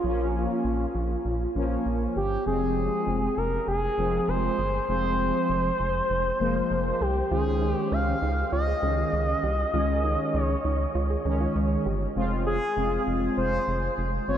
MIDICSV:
0, 0, Header, 1, 5, 480
1, 0, Start_track
1, 0, Key_signature, -4, "minor"
1, 0, Tempo, 606061
1, 32, Time_signature, 4, 2, 24, 8
1, 11387, End_track
2, 0, Start_track
2, 0, Title_t, "Analog synth lead"
2, 0, Program_c, 0, 81
2, 0, Note_on_c, 0, 65, 91
2, 1472, Note_off_c, 0, 65, 0
2, 1713, Note_on_c, 0, 67, 82
2, 1936, Note_off_c, 0, 67, 0
2, 1954, Note_on_c, 0, 68, 96
2, 2674, Note_on_c, 0, 70, 89
2, 2686, Note_off_c, 0, 68, 0
2, 2909, Note_off_c, 0, 70, 0
2, 2914, Note_on_c, 0, 68, 93
2, 3394, Note_on_c, 0, 72, 101
2, 3405, Note_off_c, 0, 68, 0
2, 3868, Note_off_c, 0, 72, 0
2, 3873, Note_on_c, 0, 72, 106
2, 5553, Note_on_c, 0, 67, 95
2, 5565, Note_off_c, 0, 72, 0
2, 5787, Note_off_c, 0, 67, 0
2, 5791, Note_on_c, 0, 68, 102
2, 6116, Note_off_c, 0, 68, 0
2, 6116, Note_on_c, 0, 67, 102
2, 6272, Note_on_c, 0, 77, 107
2, 6284, Note_off_c, 0, 67, 0
2, 6747, Note_off_c, 0, 77, 0
2, 6752, Note_on_c, 0, 75, 106
2, 8249, Note_off_c, 0, 75, 0
2, 8249, Note_on_c, 0, 73, 106
2, 9120, Note_off_c, 0, 73, 0
2, 9871, Note_on_c, 0, 68, 115
2, 10320, Note_off_c, 0, 68, 0
2, 10590, Note_on_c, 0, 72, 111
2, 11039, Note_off_c, 0, 72, 0
2, 11313, Note_on_c, 0, 73, 111
2, 11387, Note_off_c, 0, 73, 0
2, 11387, End_track
3, 0, Start_track
3, 0, Title_t, "Synth pluck"
3, 0, Program_c, 1, 84
3, 5791, Note_on_c, 1, 65, 95
3, 5942, Note_off_c, 1, 65, 0
3, 6030, Note_on_c, 1, 63, 77
3, 6181, Note_off_c, 1, 63, 0
3, 6392, Note_on_c, 1, 61, 77
3, 6467, Note_off_c, 1, 61, 0
3, 6511, Note_on_c, 1, 63, 82
3, 6662, Note_off_c, 1, 63, 0
3, 6751, Note_on_c, 1, 65, 92
3, 6827, Note_off_c, 1, 65, 0
3, 6871, Note_on_c, 1, 68, 74
3, 6947, Note_off_c, 1, 68, 0
3, 6992, Note_on_c, 1, 68, 82
3, 7067, Note_off_c, 1, 68, 0
3, 7111, Note_on_c, 1, 65, 74
3, 7262, Note_off_c, 1, 65, 0
3, 7471, Note_on_c, 1, 67, 83
3, 7622, Note_off_c, 1, 67, 0
3, 7712, Note_on_c, 1, 65, 93
3, 7862, Note_off_c, 1, 65, 0
3, 7951, Note_on_c, 1, 63, 77
3, 8102, Note_off_c, 1, 63, 0
3, 8312, Note_on_c, 1, 61, 75
3, 8387, Note_off_c, 1, 61, 0
3, 8432, Note_on_c, 1, 63, 81
3, 8583, Note_off_c, 1, 63, 0
3, 8672, Note_on_c, 1, 65, 91
3, 8747, Note_off_c, 1, 65, 0
3, 8792, Note_on_c, 1, 68, 75
3, 8867, Note_off_c, 1, 68, 0
3, 8912, Note_on_c, 1, 68, 81
3, 8987, Note_off_c, 1, 68, 0
3, 9033, Note_on_c, 1, 65, 75
3, 9183, Note_off_c, 1, 65, 0
3, 9392, Note_on_c, 1, 67, 81
3, 9543, Note_off_c, 1, 67, 0
3, 11387, End_track
4, 0, Start_track
4, 0, Title_t, "Analog polysynth"
4, 0, Program_c, 2, 90
4, 32, Note_on_c, 2, 53, 88
4, 32, Note_on_c, 2, 58, 84
4, 32, Note_on_c, 2, 61, 98
4, 681, Note_off_c, 2, 53, 0
4, 681, Note_off_c, 2, 58, 0
4, 681, Note_off_c, 2, 61, 0
4, 1231, Note_on_c, 2, 53, 91
4, 1231, Note_on_c, 2, 58, 82
4, 1231, Note_on_c, 2, 61, 99
4, 1718, Note_off_c, 2, 53, 0
4, 1718, Note_off_c, 2, 58, 0
4, 1718, Note_off_c, 2, 61, 0
4, 1951, Note_on_c, 2, 53, 75
4, 1951, Note_on_c, 2, 56, 71
4, 1951, Note_on_c, 2, 60, 85
4, 2601, Note_off_c, 2, 53, 0
4, 2601, Note_off_c, 2, 56, 0
4, 2601, Note_off_c, 2, 60, 0
4, 3151, Note_on_c, 2, 56, 70
4, 3152, Note_on_c, 2, 53, 76
4, 3152, Note_on_c, 2, 60, 82
4, 3639, Note_off_c, 2, 53, 0
4, 3639, Note_off_c, 2, 56, 0
4, 3639, Note_off_c, 2, 60, 0
4, 3872, Note_on_c, 2, 53, 78
4, 3872, Note_on_c, 2, 56, 72
4, 3872, Note_on_c, 2, 60, 84
4, 4521, Note_off_c, 2, 53, 0
4, 4521, Note_off_c, 2, 56, 0
4, 4521, Note_off_c, 2, 60, 0
4, 5071, Note_on_c, 2, 53, 94
4, 5071, Note_on_c, 2, 56, 85
4, 5071, Note_on_c, 2, 58, 101
4, 5558, Note_off_c, 2, 53, 0
4, 5558, Note_off_c, 2, 56, 0
4, 5558, Note_off_c, 2, 58, 0
4, 5791, Note_on_c, 2, 51, 74
4, 5791, Note_on_c, 2, 56, 70
4, 5791, Note_on_c, 2, 61, 85
4, 6441, Note_off_c, 2, 51, 0
4, 6441, Note_off_c, 2, 56, 0
4, 6441, Note_off_c, 2, 61, 0
4, 6991, Note_on_c, 2, 51, 77
4, 6991, Note_on_c, 2, 56, 71
4, 6991, Note_on_c, 2, 61, 82
4, 7478, Note_off_c, 2, 56, 0
4, 7478, Note_off_c, 2, 61, 0
4, 7479, Note_off_c, 2, 51, 0
4, 7711, Note_on_c, 2, 51, 92
4, 7711, Note_on_c, 2, 61, 102
4, 7712, Note_on_c, 2, 56, 84
4, 8361, Note_off_c, 2, 51, 0
4, 8361, Note_off_c, 2, 56, 0
4, 8361, Note_off_c, 2, 61, 0
4, 8911, Note_on_c, 2, 61, 99
4, 8912, Note_on_c, 2, 51, 93
4, 8912, Note_on_c, 2, 56, 85
4, 9399, Note_off_c, 2, 51, 0
4, 9399, Note_off_c, 2, 56, 0
4, 9399, Note_off_c, 2, 61, 0
4, 9631, Note_on_c, 2, 56, 89
4, 9631, Note_on_c, 2, 60, 87
4, 9631, Note_on_c, 2, 65, 105
4, 9956, Note_off_c, 2, 56, 0
4, 9956, Note_off_c, 2, 60, 0
4, 9956, Note_off_c, 2, 65, 0
4, 10111, Note_on_c, 2, 56, 77
4, 10111, Note_on_c, 2, 60, 71
4, 10111, Note_on_c, 2, 65, 88
4, 10761, Note_off_c, 2, 56, 0
4, 10761, Note_off_c, 2, 60, 0
4, 10761, Note_off_c, 2, 65, 0
4, 11312, Note_on_c, 2, 56, 72
4, 11312, Note_on_c, 2, 60, 66
4, 11312, Note_on_c, 2, 65, 80
4, 11387, Note_off_c, 2, 56, 0
4, 11387, Note_off_c, 2, 60, 0
4, 11387, Note_off_c, 2, 65, 0
4, 11387, End_track
5, 0, Start_track
5, 0, Title_t, "Analog synth bass"
5, 0, Program_c, 3, 38
5, 31, Note_on_c, 3, 34, 103
5, 367, Note_off_c, 3, 34, 0
5, 511, Note_on_c, 3, 34, 98
5, 679, Note_off_c, 3, 34, 0
5, 751, Note_on_c, 3, 34, 93
5, 919, Note_off_c, 3, 34, 0
5, 992, Note_on_c, 3, 34, 97
5, 1160, Note_off_c, 3, 34, 0
5, 1232, Note_on_c, 3, 34, 99
5, 1400, Note_off_c, 3, 34, 0
5, 1472, Note_on_c, 3, 34, 93
5, 1640, Note_off_c, 3, 34, 0
5, 1712, Note_on_c, 3, 31, 83
5, 1880, Note_off_c, 3, 31, 0
5, 1952, Note_on_c, 3, 29, 106
5, 2288, Note_off_c, 3, 29, 0
5, 2432, Note_on_c, 3, 29, 106
5, 2600, Note_off_c, 3, 29, 0
5, 2672, Note_on_c, 3, 29, 98
5, 2840, Note_off_c, 3, 29, 0
5, 2912, Note_on_c, 3, 29, 100
5, 3080, Note_off_c, 3, 29, 0
5, 3152, Note_on_c, 3, 29, 101
5, 3320, Note_off_c, 3, 29, 0
5, 3392, Note_on_c, 3, 29, 105
5, 3560, Note_off_c, 3, 29, 0
5, 3632, Note_on_c, 3, 31, 91
5, 3800, Note_off_c, 3, 31, 0
5, 3872, Note_on_c, 3, 29, 104
5, 4208, Note_off_c, 3, 29, 0
5, 4352, Note_on_c, 3, 29, 101
5, 4520, Note_off_c, 3, 29, 0
5, 4592, Note_on_c, 3, 29, 93
5, 4760, Note_off_c, 3, 29, 0
5, 4832, Note_on_c, 3, 29, 102
5, 5000, Note_off_c, 3, 29, 0
5, 5071, Note_on_c, 3, 29, 104
5, 5239, Note_off_c, 3, 29, 0
5, 5311, Note_on_c, 3, 29, 107
5, 5480, Note_off_c, 3, 29, 0
5, 5552, Note_on_c, 3, 36, 92
5, 5720, Note_off_c, 3, 36, 0
5, 5791, Note_on_c, 3, 37, 109
5, 6127, Note_off_c, 3, 37, 0
5, 6271, Note_on_c, 3, 37, 97
5, 6440, Note_off_c, 3, 37, 0
5, 6511, Note_on_c, 3, 37, 100
5, 6679, Note_off_c, 3, 37, 0
5, 6751, Note_on_c, 3, 37, 104
5, 6919, Note_off_c, 3, 37, 0
5, 6991, Note_on_c, 3, 37, 100
5, 7159, Note_off_c, 3, 37, 0
5, 7231, Note_on_c, 3, 37, 105
5, 7399, Note_off_c, 3, 37, 0
5, 7472, Note_on_c, 3, 36, 95
5, 7640, Note_off_c, 3, 36, 0
5, 7711, Note_on_c, 3, 37, 110
5, 8047, Note_off_c, 3, 37, 0
5, 8192, Note_on_c, 3, 37, 110
5, 8360, Note_off_c, 3, 37, 0
5, 8432, Note_on_c, 3, 37, 99
5, 8600, Note_off_c, 3, 37, 0
5, 8672, Note_on_c, 3, 37, 107
5, 8840, Note_off_c, 3, 37, 0
5, 8912, Note_on_c, 3, 37, 103
5, 9080, Note_off_c, 3, 37, 0
5, 9152, Note_on_c, 3, 37, 110
5, 9320, Note_off_c, 3, 37, 0
5, 9393, Note_on_c, 3, 31, 96
5, 9560, Note_off_c, 3, 31, 0
5, 9633, Note_on_c, 3, 29, 109
5, 9968, Note_off_c, 3, 29, 0
5, 10113, Note_on_c, 3, 29, 104
5, 10280, Note_off_c, 3, 29, 0
5, 10353, Note_on_c, 3, 29, 101
5, 10520, Note_off_c, 3, 29, 0
5, 10593, Note_on_c, 3, 29, 108
5, 10760, Note_off_c, 3, 29, 0
5, 10833, Note_on_c, 3, 29, 104
5, 11000, Note_off_c, 3, 29, 0
5, 11072, Note_on_c, 3, 29, 106
5, 11240, Note_off_c, 3, 29, 0
5, 11312, Note_on_c, 3, 31, 98
5, 11387, Note_off_c, 3, 31, 0
5, 11387, End_track
0, 0, End_of_file